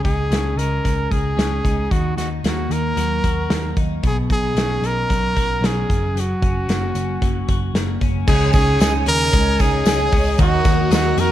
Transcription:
Already playing: clean electric guitar C#3
0.04 picked electric bass C#2, clean electric guitar D#4, trumpet G#4, kick, closed hi-hat
0.31 picked electric bass C#2, clean electric guitar C#4, snare, closed hi-hat
0.56 picked electric bass C#2, clean electric guitar D#4, trumpet A#4, closed hi-hat
0.84 picked electric bass C#2, clean electric guitar G#3, kick, closed hi-hat
1.11 picked electric bass C#2, clean electric guitar G#4, trumpet G#4, kick, closed hi-hat
1.37 picked electric bass C#2, clean electric guitar C#4, snare, closed hi-hat
1.64 picked electric bass C#2, clean electric guitar D#4, kick, closed hi-hat
1.91 picked electric bass D#2, clean electric guitar D#3, trumpet F#4, kick, closed hi-hat
2.17 picked electric bass D#2, clean electric guitar D#4, trumpet F#4, snare, closed hi-hat
2.44 picked electric bass D#2, clean electric guitar A#3, trumpet F#4, snare, closed hi-hat
2.70 picked electric bass D#2, clean electric guitar D#4, trumpet A#4, closed hi-hat
2.97 picked electric bass D#2, clean electric guitar F#3, closed hi-hat
3.24 picked electric bass D#2, clean electric guitar F#4, kick, closed hi-hat
3.50 picked electric bass D#2, clean electric guitar A#3, snare, closed hi-hat
3.77 picked electric bass D#2, clean electric guitar D#4, kick, closed hi-hat
4.03 picked electric bass B1, clean electric guitar B2, trumpet G#4, kick, closed hi-hat
4.30 picked electric bass B1, clean electric guitar D#4, trumpet G#4, kick, closed hi-hat
4.55 picked electric bass B1, clean electric guitar C#4, snare, closed hi-hat
4.82 picked electric bass B1, clean electric guitar D#4, closed hi-hat
4.86 trumpet A#4
5.09 picked electric bass B1, clean electric guitar F#3, kick, closed hi-hat
5.36 picked electric bass B1, clean electric guitar F#4, kick, closed hi-hat
5.61 picked electric bass B1, clean electric guitar C#4, snare, closed hi-hat
5.66 trumpet G#4
5.90 picked electric bass F#1, clean electric guitar F#2, kick, closed hi-hat
6.16 clean electric guitar F#2, closed hi-hat
6.20 trumpet F#4
6.42 picked electric bass F#1, clean electric guitar C#4, kick, closed hi-hat
6.68 picked electric bass F#1, clean electric guitar A#3, snare, closed hi-hat
6.95 picked electric bass F#1, clean electric guitar C#4, closed hi-hat
7.22 picked electric bass F#1, clean electric guitar F#3, kick, closed hi-hat
7.48 picked electric bass F#1, clean electric guitar F#4, kick, closed hi-hat
7.74 picked electric bass F#1, clean electric guitar A#3, snare, closed hi-hat
8.01 picked electric bass F#1, clean electric guitar C#4, kick, closed hi-hat
8.27 picked electric bass C#2, twelve-string acoustic guitar C#3 G#3 C#4 D#4 G#4, clean electric guitar C#3 G#4, trumpet G#4, string machine C#5 D#5 G#5 D#6, kick, crash, tambourine
8.53 picked electric bass C#2, twelve-string acoustic guitar C#4 D#4 G#4, clean electric guitar C#4, trumpet G#4, kick, snare, closed hi-hat, tambourine
8.79 picked electric bass C#2, twelve-string acoustic guitar G#3 C#4 D#4 G#4, clean electric guitar D#4, trumpet G#4, snare, closed hi-hat, tambourine
9.06 picked electric bass D#2, twelve-string acoustic guitar C#4 D#4 G#4, clean electric guitar G#4, trumpet A#4, closed hi-hat, tambourine
9.33 picked electric bass C#2, clean electric guitar G#3, kick, closed hi-hat, tambourine
9.59 picked electric bass C#2, twelve-string acoustic guitar C#4 D#4 G#4, clean electric guitar D#4, trumpet G#4, kick, closed hi-hat, tambourine
9.85 picked electric bass C#2, twelve-string acoustic guitar G#3 C#4 D#4 G#4, clean electric guitar G#4, snare, closed hi-hat, tambourine
10.12 picked electric bass C#2, clean electric guitar C#4, kick, open hi-hat, tambourine
10.25 clean electric guitar D#4
10.38 picked electric bass D#2, twelve-string acoustic guitar D#3 F#3 A#3 D#4 F#4, clean electric guitar D#3 F#4, trumpet F#4, string machine A#4 F#5, kick, closed hi-hat, tambourine
10.65 picked electric bass D#2, clean electric guitar A#3, twelve-string acoustic guitar A#3 D#4 F#4, kick, snare, closed hi-hat, tambourine
10.90 picked electric bass D#2, twelve-string acoustic guitar F#3 A#3 D#4 F#4, clean electric guitar D#4, trumpet F#4, snare, closed hi-hat, tambourine
11.17 picked electric bass F2, twelve-string acoustic guitar A#3 D#4 F#4, clean electric guitar F#4, trumpet A#4, closed hi-hat

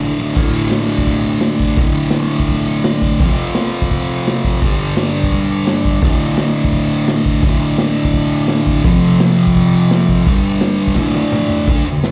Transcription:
0.03 distorted electric guitar D2 A2 D3
0.20 distorted electric guitar A2 D3
0.36 distorted electric guitar D2 A2 D3, kick, crash
0.55 crash
0.71 snare, crash
0.91 crash
0.98 kick
1.07 kick, crash
1.24 crash
1.41 snare, crash
1.59 kick, crash
1.76 distorted electric guitar D2, kick, crash
1.80 distorted electric guitar A2 D3
1.94 crash
2.11 snare, crash
2.29 crash
2.40 kick
2.47 kick, crash
2.66 crash
2.84 snare, crash
3.01 kick, crash
3.19 distorted electric guitar F2 C3, kick, crash
3.25 distorted electric guitar F3
3.38 crash
3.55 snare, crash
3.73 crash
3.82 kick, snare
3.91 kick, crash
4.10 crash
4.28 snare, crash
4.45 kick, crash
4.62 distorted electric guitar G2 D3 G3, kick, crash
4.80 crash
4.97 snare, crash
5.15 crash
5.24 kick
5.32 kick, crash
5.49 crash
5.67 snare, crash
5.85 kick, crash
6.01 distorted electric guitar D2 A2 D3, kick, crash
6.21 crash
6.38 snare, crash
6.57 crash
6.65 kick
6.73 kick, crash
6.91 crash
7.08 snare, crash
7.26 kick, crash
7.43 distorted electric guitar D2 A2 D3, kick, crash
7.61 crash
7.78 snare, crash
7.97 crash
8.05 kick, snare
8.14 kick, crash
8.32 crash
8.48 snare, crash
8.66 kick, crash
8.84 distorted electric guitar F2 C3, kick, crash
8.88 distorted electric guitar F3
9.03 crash
9.20 snare, crash
9.39 crash
9.47 kick
9.56 kick, crash
9.74 crash
9.91 snare, crash
10.09 kick, crash
10.25 distorted electric guitar G2 D3 G3, kick, crash
10.44 crash
10.61 snare, crash
10.79 crash
10.87 kick, snare
10.95 distorted electric guitar D2 A2, kick, snare
10.99 distorted electric guitar D3
11.14 high tom
11.32 mid tom
11.49 floor tom
11.68 distorted electric guitar D2 D3, kick, crash
11.86 distorted electric guitar D2, crash
12.04 muted distorted electric guitar stroke, snare, crash

